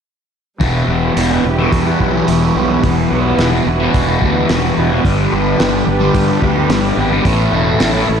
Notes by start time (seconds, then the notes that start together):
0.60 E1 E2 B2 E3 G3 B3 E4 G4 B4, kick, open hi-hat
0.88 E1 E2 B2 E3
1.15 E1 E2 B2 E3, open hi-hat
1.31 B2 E3
1.44 E1, muted distorted electric guitar stroke
1.58 B2 E3
1.72 E2, kick, open hi-hat
1.86 B2 E3
2.00 B1 E2 B2 E3, kick
2.14 B2 E3
2.28 E1 E2 B2 E3, open hi-hat
2.55 B1 E2 B2 E3
2.69 B2 E3
2.83 E1 E2 B2 E3 F#4, kick, open hi-hat
3.11 B1 E2 B2 E3
3.38 E1 E2 B2 E3, snare, open hi-hat
3.52 B2 E3
3.66 E1, muted distorted electric guitar stroke
3.79 B2 E3
3.94 E1, kick, open hi-hat
4.08 B2 E3
4.22 D2 E2 B2 E3, kick
4.36 B2 E3
4.49 E1 E2 B2 E3, snare, open hi-hat
4.77 E1 E2 B2 E3
4.90 B2 E3
5.04 G1 G2 D3 G3 B3 D4 G4, kick, open hi-hat
5.32 G1 G2 D3 G3
5.58 G1 G2 D3 G3, snare, open hi-hat
5.72 D3 G3
5.86 G1, muted distorted electric guitar stroke
6.00 D3 G3
6.15 G2, kick, open hi-hat
6.28 D3 G3
6.41 D2 G2 D3 G3, kick
6.56 D3 G3
6.69 G1 G2 D3 G3, snare, open hi-hat
6.96 G#1 G2 D3 G3
7.11 D3 G3
7.24 A1 A2 E3 A3 C#4 E4 A4, kick, open hi-hat
7.52 E1 A2 E3 A3
7.79 A1 A2 E3 A3, snare, open hi-hat
7.93 E3 A3
8.08 A1, muted distorted electric guitar stroke